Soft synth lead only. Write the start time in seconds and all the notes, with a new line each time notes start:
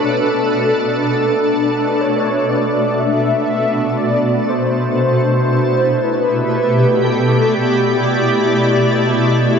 0.00 A4
1.00 A4
2.01 C#5
2.49 D5
3.00 E5
3.97 D5
4.49 C5
4.98 C5
6.04 B4
7.05 A4
7.54 G4